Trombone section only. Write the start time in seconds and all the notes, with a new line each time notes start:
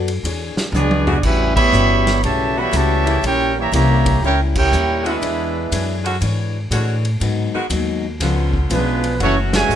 0.74 G#3 B3 D4
1.25 G3 C#4 E4
1.57 E3 G3 B3
2.23 C#3 E3 A3
2.57 E3 G3 B3
2.72 C#3 E3 A3
3.23 C#4 E4 G4
3.55 E3 G3 A#3
3.72 E3 G3 A#3
4.24 C#4 E4 G4
4.55 C#4 E4 G4
5.06 G#3 B3 E4
8.71 F3 G#3 B3
9.23 E3 A3 C#4
9.54 C#3 E3 G#3